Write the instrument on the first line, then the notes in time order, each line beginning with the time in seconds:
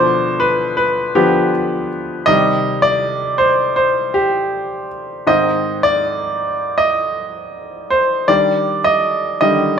grand piano
Already playing: B2 D3 F3 C5 D5
0.40 B4
0.77 B4
1.15 D3 F3 B3 G4
2.26 C3 D#3 G3 D#5
2.82 D5
3.38 C5
3.76 C5
4.14 G4
5.27 G#2 D#3 C4 D#5
5.83 D5
6.78 D#5
7.90 C5
8.28 D#3 G3 D4 D5
8.84 D#5
9.41 D3 D#3 G3 D#5